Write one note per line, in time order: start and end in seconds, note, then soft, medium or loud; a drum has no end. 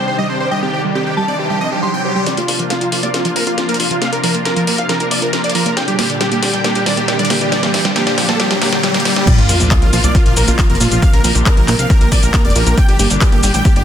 0.00 2.23 C3 medium
0.00 2.23 D#3 medium
0.00 2.23 G3 medium
0.00 2.23 D4 medium
0.00 2.22 G4 medium
0.00 0.43 G5 medium
0.00 riser medium
0.08 0.16 C5 medium
0.08 0.14 C5 medium
0.18 0.25 G3 medium
0.18 0.27 D#5 medium
0.29 0.36 C4 medium
0.29 0.38 C5 medium
0.40 0.49 C5 medium
0.40 0.47 C5 medium
0.51 0.58 G3 medium
0.51 0.60 D#5 loud
0.51 1.08 G5 medium
0.62 0.68 C4 medium
0.62 0.71 G4 medium
0.73 0.82 G4 medium
0.73 0.79 C5 medium
0.84 0.90 G3 medium
0.95 1.01 C4 medium
0.95 1.04 G4 medium
1.06 1.15 G4 medium
1.06 1.12 C5 medium
1.17 1.23 G3 medium
1.17 1.26 G4 medium
1.17 1.74 A5 medium
1.28 1.34 C4 medium
1.28 1.37 D5 loud
1.39 1.48 G4 medium
1.39 1.45 C5 medium
1.50 1.56 G3 medium
1.50 1.59 G4 medium
1.61 1.67 C4 medium
1.61 1.70 D#5 medium
1.72 1.80 G4 medium
1.72 1.78 C5 medium
1.83 1.89 G3 medium
1.83 1.91 G4 medium
1.83 2.24 C6 medium
1.94 2.00 C4 medium
1.94 2.02 G5 medium
2.05 2.13 G4 medium
2.05 2.11 C5 medium
2.16 2.22 G3 medium
2.16 2.24 G4 medium
2.26 5.73 C3 medium
2.26 5.73 F3 medium
2.26 2.33 F3 medium
2.26 5.73 A#3 medium
2.26 9.23 D4 medium
2.26 5.73 F4 medium
2.26 2.35 D5 loud
2.26 snare soft
2.26 closed hi-hat medium
2.26 riser medium
2.37 2.45 A#1 medium
2.37 2.44 A#3 medium
2.37 2.46 F4 medium
2.37 closed hi-hat medium
2.48 2.55 A#1 loud
2.48 2.57 F4 medium
2.48 2.55 A#4 medium
2.48 open hi-hat loud
2.59 2.66 A#1 medium
2.59 2.66 F3 medium
2.59 closed hi-hat medium
2.70 2.76 A#3 medium
2.70 2.79 F4 medium
2.70 snare soft
2.70 closed hi-hat medium
2.81 2.88 A#1 medium
2.81 2.90 F4 medium
2.81 2.87 A#4 medium
2.81 closed hi-hat medium
2.92 2.99 A#1 medium
2.92 2.98 F3 medium
2.92 3.01 F4 medium
2.92 open hi-hat loud
3.03 3.10 C2 medium
3.03 3.09 A#3 medium
3.03 3.12 D5 loud
3.03 closed hi-hat medium
3.14 3.23 F4 medium
3.14 3.20 A#4 medium
3.14 snare medium
3.14 closed hi-hat medium
3.25 3.32 A#1 medium
3.25 3.31 F3 medium
3.25 3.34 F4 medium
3.25 closed hi-hat medium
3.36 3.43 A#1 loud
3.36 3.42 A#3 medium
3.36 3.45 A#4 loud
3.36 open hi-hat loud
3.47 3.54 A#1 medium
3.47 3.56 F4 medium
3.47 3.53 A#4 medium
3.47 closed hi-hat medium
3.58 3.64 F3 medium
3.58 3.67 F4 medium
3.58 snare medium
3.58 closed hi-hat medium
3.69 3.76 A#1 medium
3.69 3.75 A#3 medium
3.69 3.77 A#4 medium
3.69 closed hi-hat soft
3.74 closed hi-hat medium
3.80 3.87 A#1 loud
3.80 3.88 F4 medium
3.80 3.86 A#4 medium
3.80 open hi-hat loud
3.91 3.98 A#1 loud
3.91 3.97 F3 medium
3.91 3.99 F4 medium
3.91 closed hi-hat medium
4.02 4.08 A#3 medium
4.02 4.10 F5 loud
4.02 snare medium
4.02 closed hi-hat medium
4.12 4.20 A#1 medium
4.12 4.21 A#4 medium
4.12 4.19 A#4 medium
4.12 closed hi-hat medium
4.23 4.31 A#1 loud
4.23 4.30 F3 medium
4.23 4.32 A#4 medium
4.23 open hi-hat loud
4.34 4.42 A#1 medium
4.34 4.41 A#3 medium
4.34 closed hi-hat medium
4.45 4.54 A#4 medium
4.45 4.52 A#4 medium
4.45 snare medium
4.45 closed hi-hat medium
4.56 4.63 A#1 medium
4.56 4.63 F3 medium
4.56 4.65 A#4 medium
4.56 closed hi-hat medium
4.67 4.74 A#1 loud
4.67 4.74 A#3 medium
4.67 4.76 A#4 medium
4.67 open hi-hat loud
4.78 4.85 C2 medium
4.78 4.84 A#4 medium
4.78 4.87 F5 loud
4.78 closed hi-hat medium
4.89 4.95 F3 medium
4.89 4.98 A#4 medium
4.89 snare medium
4.89 closed hi-hat medium
5.00 5.07 A#1 medium
5.00 5.06 A#3 medium
5.00 5.09 A#4 medium
5.00 closed hi-hat medium
5.11 5.18 A#1 loud
5.11 5.17 A#4 medium
5.11 5.20 D5 loud
5.11 open hi-hat loud
5.22 5.29 A#1 medium
5.22 5.28 F3 medium
5.22 5.31 A#4 medium
5.22 closed hi-hat medium
5.33 5.39 A#3 medium
5.33 5.42 A#4 medium
5.33 snare medium
5.33 closed hi-hat medium
5.44 5.51 A#1 medium
5.44 5.50 A#4 medium
5.44 5.53 D5 medium
5.44 closed hi-hat soft
5.50 closed hi-hat medium
5.55 5.62 A#1 loud
5.55 5.61 F3 medium
5.55 5.64 A#4 medium
5.55 open hi-hat loud
5.66 5.73 A#1 medium
5.66 5.72 A#3 medium
5.66 5.75 A#4 medium
5.66 closed hi-hat medium
5.77 9.24 A#2 medium
5.77 9.24 D3 medium
5.77 9.24 G3 medium
5.77 9.24 G4 medium
5.77 5.83 D5 medium
5.77 5.85 G5 loud
5.77 snare medium
5.77 closed hi-hat medium
5.88 5.95 G1 medium
5.88 5.94 G3 medium
5.88 5.96 G4 medium
5.88 closed hi-hat soft
5.99 6.05 A#3 medium
5.99 6.07 G4 medium
5.99 snare medium
5.99 open hi-hat loud
6.10 6.17 G1 medium
6.10 6.16 D5 medium
6.10 closed hi-hat soft
6.21 6.27 G3 medium
6.21 6.29 G4 medium
6.21 snare medium
6.21 closed hi-hat medium
6.32 6.39 G1 medium
6.32 6.38 A#3 medium
6.32 6.40 G4 medium
6.32 closed hi-hat medium
6.42 6.50 G1 loud
6.42 6.51 G4 medium
6.42 6.49 D5 medium
6.42 snare medium
6.42 open hi-hat loud
6.53 6.61 A1 medium
6.53 6.60 G3 medium
6.53 6.62 G5 loud
6.53 closed hi-hat medium
6.64 6.71 A#3 medium
6.64 6.73 G4 medium
6.64 snare medium
6.64 closed hi-hat medium
6.75 6.82 G1 medium
6.75 6.84 G4 medium
6.75 6.82 D5 medium
6.75 closed hi-hat medium
6.86 6.93 G1 loud
6.86 6.92 G3 medium
6.86 6.95 D5 loud
6.86 snare medium
6.86 open hi-hat loud
6.97 7.04 G1 loud
6.97 7.03 A#3 medium
6.97 7.06 G4 medium
6.97 closed hi-hat medium
7.08 7.17 G4 medium
7.08 7.14 D5 medium
7.08 snare medium
7.08 closed hi-hat medium
7.19 7.26 G1 medium
7.19 7.25 G3 medium
7.19 7.28 D5 medium
7.19 closed hi-hat soft
7.25 closed hi-hat medium
7.30 7.37 G1 loud
7.30 7.36 A#3 medium
7.30 7.39 G4 medium
7.30 snare medium
7.30 open hi-hat loud
7.41 7.48 G1 medium
7.41 7.50 G4 medium
7.41 7.47 D5 medium
7.41 closed hi-hat medium
7.52 7.58 G3 medium
7.52 7.61 D5 loud
7.52 snare medium
7.52 closed hi-hat medium
7.63 7.70 G1 medium
7.63 7.69 A#3 medium
7.63 7.72 G4 medium
7.63 snare medium
7.63 closed hi-hat medium
7.74 7.81 G1 loud
7.74 7.83 G4 medium
7.74 7.80 D5 medium
7.74 snare medium
7.74 open hi-hat loud
7.85 7.91 G3 medium
7.85 snare medium
7.85 closed hi-hat medium
7.96 8.02 A#3 medium
7.96 8.05 G4 medium
7.96 snare loud
7.96 closed hi-hat medium
8.07 8.14 G1 medium
8.07 8.15 G4 medium
8.07 8.13 D5 medium
8.07 snare medium
8.07 closed hi-hat soft
8.18 8.25 G1 loud
8.18 8.24 G3 medium
8.18 8.26 G4 medium
8.18 snare loud
8.18 open hi-hat loud
8.29 8.36 A1 loud
8.29 8.35 A#3 medium
8.29 8.37 A4 loud
8.29 snare medium
8.29 closed hi-hat medium
8.40 8.48 G4 medium
8.40 8.46 D5 medium
8.40 snare loud
8.40 closed hi-hat medium
8.51 8.58 G1 medium
8.51 8.57 G3 medium
8.51 8.59 G4 medium
8.51 snare medium
8.51 closed hi-hat medium
8.62 8.68 A#3 medium
8.62 8.70 G4 loud
8.62 snare loud
8.62 open hi-hat loud
8.72 8.80 G1 medium
8.72 8.81 G4 medium
8.72 8.79 D5 medium
8.72 snare medium
8.72 closed hi-hat medium
8.83 8.90 G3 medium
8.83 8.92 G4 medium
8.83 snare loud
8.83 closed hi-hat medium
8.94 9.01 G1 medium
8.94 9.01 A#3 medium
8.94 9.03 G4 medium
8.94 snare medium
8.94 closed hi-hat soft
9.00 closed hi-hat medium
9.05 9.14 G4 medium
9.05 9.11 D5 medium
9.05 snare loud
9.05 open hi-hat loud
9.16 9.23 G1 loud
9.16 9.22 G3 medium
9.16 9.25 G4 medium
9.16 snare loud
9.16 closed hi-hat medium
9.27 12.74 C3 medium
9.27 12.74 F3 medium
9.27 9.33 F3 medium
9.27 12.74 A#3 medium
9.27 13.84 D4 medium
9.27 11.01 F4 medium
9.27 9.36 D5 loud
9.27 kick loud
9.27 closed hi-hat medium
9.27 crash loud
9.27 sub drop medium
9.27 shaker soft
9.38 9.45 A#1 medium
9.38 9.44 A#3 medium
9.38 9.47 F4 medium
9.38 closed hi-hat medium
9.49 9.56 A#1 loud
9.49 9.58 F4 medium
9.49 9.55 A#4 medium
9.49 open hi-hat loud
9.49 shaker medium
9.60 9.67 A#1 loud
9.60 9.66 F3 medium
9.60 closed hi-hat medium
9.60 shaker soft
9.71 9.77 A#3 medium
9.71 9.80 F4 medium
9.71 kick loud
9.71 clap loud
9.71 closed hi-hat medium
9.71 shaker soft
9.82 9.89 A#1 medium
9.82 9.91 F4 medium
9.82 9.88 A#4 medium
9.82 closed hi-hat medium
9.93 10.00 A#1 loud
9.93 9.99 F3 medium
9.93 10.02 F4 medium
9.93 open hi-hat loud
9.93 shaker medium
10.04 10.11 C2 medium
10.04 10.10 A#3 medium
10.04 10.13 D5 loud
10.04 closed hi-hat medium
10.04 shaker soft
10.15 10.24 F4 medium
10.15 10.21 A#4 medium
10.15 kick loud
10.15 closed hi-hat medium
10.15 shaker soft
10.26 10.33 A#1 medium
10.26 10.32 F3 medium
10.26 10.35 F4 medium
10.26 closed hi-hat medium
10.37 10.44 A#1 loud
10.37 10.43 A#3 medium
10.37 10.45 A#4 loud
10.37 open hi-hat loud
10.37 shaker medium
10.48 10.55 A#1 loud
10.48 10.56 F4 medium
10.48 10.54 A#4 medium
10.48 closed hi-hat medium
10.48 shaker soft
10.59 10.65 F3 medium
10.59 10.67 F4 medium
10.59 kick loud
10.59 clap loud
10.59 closed hi-hat medium
10.59 shaker soft
10.70 10.77 F1 medium
10.70 10.76 A#3 medium
10.70 10.78 A#4 medium
10.70 closed hi-hat medium
10.75 closed hi-hat medium
10.80 10.88 A#1 loud
10.80 10.89 F4 medium
10.80 10.87 A#4 medium
10.80 open hi-hat loud
10.80 shaker medium
10.91 10.98 A#1 medium
10.91 10.98 F3 medium
10.91 11.00 F4 medium
10.91 closed hi-hat medium
10.91 shaker soft
11.02 11.09 A#3 medium
11.02 13.84 G4 medium
11.02 11.11 F5 loud
11.02 kick loud
11.02 closed hi-hat medium
11.02 shaker soft
11.13 11.20 A#1 medium
11.13 11.20 A#4 medium
11.13 11.22 A#4 medium
11.13 closed hi-hat medium
11.24 11.31 A#1 loud
11.24 11.30 F3 medium
11.24 11.33 A#4 medium
11.24 open hi-hat loud
11.24 shaker medium
11.35 11.42 A#1 medium
11.35 11.41 A#3 medium
11.35 closed hi-hat medium
11.35 shaker soft
11.46 11.55 A#4 medium
11.46 11.52 A#4 medium
11.46 kick loud
11.46 clap loud
11.46 closed hi-hat medium
11.46 shaker soft
11.57 11.64 A#1 medium
11.57 11.63 F3 medium
11.57 11.66 A#4 medium
11.57 closed hi-hat medium
11.68 11.75 A#1 loud
11.68 11.74 A#3 medium
11.68 11.77 A#4 medium
11.68 clap medium
11.68 open hi-hat loud
11.68 shaker medium
11.79 11.86 C2 medium
11.79 11.85 A#4 medium
11.79 11.88 F5 loud
11.79 closed hi-hat medium
11.79 shaker soft
11.90 11.96 F3 medium
11.90 11.99 A#4 medium
11.90 kick loud
11.90 closed hi-hat medium
11.90 shaker soft
12.01 12.08 A#1 medium
12.01 12.07 A#3 medium
12.01 12.10 A#4 medium
12.01 closed hi-hat medium
12.12 12.19 A#1 loud
12.12 12.18 A#4 medium
12.12 12.21 D5 loud
12.12 kick medium
12.12 open hi-hat loud
12.12 shaker medium
12.23 12.30 A#1 medium
12.23 12.29 F3 medium
12.23 12.32 A#4 medium
12.23 closed hi-hat medium
12.23 shaker soft
12.34 12.40 A#3 medium
12.34 12.43 A#4 medium
12.34 kick loud
12.34 clap loud
12.34 closed hi-hat medium
12.34 shaker soft
12.45 12.52 F1 medium
12.45 12.51 A#4 medium
12.45 12.53 D5 medium
12.45 closed hi-hat soft
12.50 closed hi-hat medium
12.56 12.63 A#1 loud
12.56 12.62 F3 medium
12.56 12.64 A#4 medium
12.56 open hi-hat loud
12.56 shaker medium
12.67 12.74 A#1 medium
12.67 12.73 A#3 medium
12.67 12.75 A#4 medium
12.67 closed hi-hat medium
12.67 shaker soft
12.77 13.84 A#2 medium
12.77 13.84 D3 medium
12.77 13.84 G3 medium
12.77 12.84 D5 medium
12.77 12.86 G5 loud
12.77 kick loud
12.77 closed hi-hat medium
12.77 shaker soft
12.88 12.96 G1 medium
12.88 12.95 G3 medium
12.88 12.97 G4 medium
12.88 closed hi-hat medium
12.99 13.07 G1 loud
12.99 13.06 A#3 medium
12.99 13.08 G4 medium
12.99 open hi-hat loud
12.99 shaker medium
13.10 13.17 G1 medium
13.10 13.17 D5 medium
13.10 closed hi-hat medium
13.10 shaker soft
13.21 13.28 G3 medium
13.21 13.30 G4 medium
13.21 kick loud
13.21 clap loud
13.21 closed hi-hat medium
13.21 shaker soft
13.32 13.39 G1 medium
13.32 13.38 A#3 medium
13.32 13.41 G4 medium
13.32 closed hi-hat medium
13.43 13.50 G1 loud
13.43 13.52 G4 medium
13.43 13.49 D5 medium
13.43 open hi-hat loud
13.43 shaker medium
13.54 13.61 A1 medium
13.54 13.60 G3 medium
13.54 13.63 G5 loud
13.54 closed hi-hat medium
13.54 shaker soft
13.65 13.71 A#3 medium
13.65 13.74 G4 medium
13.65 kick loud
13.65 closed hi-hat medium
13.65 shaker soft
13.76 13.83 G1 medium
13.76 13.84 G4 medium
13.76 13.82 D5 medium
13.76 closed hi-hat medium